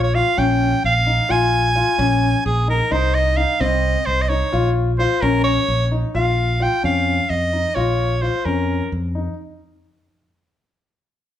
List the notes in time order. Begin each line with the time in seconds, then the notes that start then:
Already playing: A#1
0.03 C#5
0.15 F4 F5
0.37 A#1 C#4 G5
0.84 A#1 F5
1.07 D#4
1.29 A#1 F4 G#5
1.76 F4
1.98 A#1 C#4
2.46 A#1 G#4
2.68 D#4 A#4
2.91 C2 D#4 C5
3.14 D#5
3.37 D#4 F5
3.60 C2 C4 D#5
4.06 C2 C5
4.22 D#5
4.29 D#4 C#5
4.53 A#1 F4
4.99 F4 C5
5.22 A#1 C#4 A#4
5.44 C#5
5.68 A#1
5.92 D#4
6.15 A#1 F4 F5
6.60 F4 G5
6.83 F2 C#4 F5
7.30 F2 D#5
7.53 D#4
7.75 A#1 F4 C#5
8.22 F4 C5
8.45 F2 C#4 A#4
8.92 F2
9.15 D#4